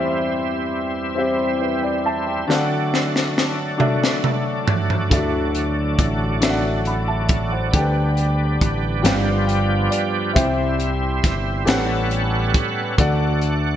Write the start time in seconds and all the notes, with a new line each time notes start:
Already playing: E2 E3 G3 C4 E4 G4 C5 E5
1.15 C4 E4 G4 C5
1.19 E5
1.61 B4 E5
1.83 D5 G5
2.06 E5 A5
2.27 D5 G5
2.47 D3 F#3 A3 D4 F#4 A4 D5 F5, snare
2.57 F#5
2.94 snare
3.16 snare
3.38 snare
3.77 D4 F#4 A4 D5 E5, mid tom
4.04 snare
4.24 mid tom
4.68 floor tom
4.90 floor tom
5.10 D2 D3 D4 E4 A4 D5 E5, kick, closed hi-hat
5.17 F#4
5.55 closed hi-hat
5.99 A1, kick, closed hi-hat
6.40 D4 F#4 A4 D5 E5, snare, closed hi-hat
6.50 F#5
6.85 F#5 B5, closed hi-hat
7.08 E5 A5
7.29 kick, closed hi-hat
7.52 C5 F#5
7.71 D2 D3 G3 B3 D4 G4 A4 D5, kick, closed hi-hat
7.76 G5
7.80 B4
8.17 closed hi-hat
8.61 A1, kick, closed hi-hat
9.02 G1 G2 F3 F4 G4 B4 D5 F5, snare, closed hi-hat
9.47 G5, closed hi-hat
9.91 D5, closed hi-hat
10.33 C2 C3 C4 E4 G4 C5 E5 G5, kick, closed hi-hat
10.80 closed hi-hat
11.24 G1, kick, snare, closed hi-hat
11.65 A1 A2 B3 C#4 G4 A4 B4 C#5 F#5, snare, closed hi-hat
12.11 closed hi-hat
12.54 kick, closed hi-hat
12.97 D2 D3 A3 D4 F#4 A4 D5 F#5, kick, closed hi-hat
13.41 closed hi-hat